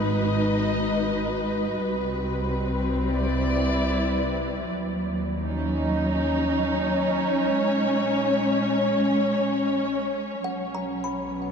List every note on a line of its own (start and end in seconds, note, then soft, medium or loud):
0.00 1.74 G#1 medium
0.00 1.79 G#3 medium
0.00 1.78 D#4 medium
0.00 2.95 F#4 medium
0.00 4.66 B4 medium
0.00 1.80 D#5 medium
1.79 4.62 C2 medium
1.79 4.67 G3 medium
1.93 4.67 C4 medium
3.10 4.67 E4 medium
3.10 4.67 D5 medium
4.66 7.48 D#2 medium
4.66 7.53 F#3 medium
5.42 8.69 D#4 medium
5.47 11.52 C#4 medium
5.98 11.52 C#5 medium
7.53 10.40 A#1 medium
7.53 10.45 G#3 medium
10.44 11.52 B1 medium
10.44 11.52 F#3 medium
10.44 11.52 F#5 soft
10.75 11.52 A#5 soft
11.04 11.52 B5 soft
11.25 11.52 B3 medium